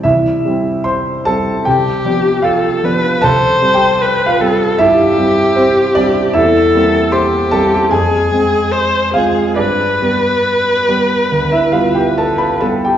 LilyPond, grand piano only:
<<
  \new Staff \with { instrumentName = "Grand piano" } { \time 4/4 \key c \major \tempo 4 = 75 <e' e''>4 <c'' c'''>8 <a' a''>8 <g' g''>4 <f' f''>4 | \tuplet 3/2 { <a' a''>4 <g' g''>8~ <g' g''>8 <f' f''>4 } <e' e''>4 <c' c''>8 <d' d''>8 | <e' e''>4 <c'' c'''>8 <a' a''>8 <aes' aes''>4. <f' f''>8 | <d' d''>2~ <d' d''>16 <e' e''>16 <f' f''>16 <g' g''>16 <a' a''>16 <b' b''>16 <a' a''>16 <g' g''>16 | }
  \new Staff \with { instrumentName = "Grand piano" } { \clef bass \time 4/4 \key c \major c,8 <g c'>4 <g c'>8 c,8 <f b d'>4 <f b d'>8 | c,8 <g c'>4 <g c'>8 g,8 <g c'>4 <g c'>8 | e,8 <g bes c'>4 <g bes c'>8 f,8 <aes c'>4 <aes c'>8 | g,8 <g b>4 <g b>8 d,8 <g b>4 <g b>8 | }
>>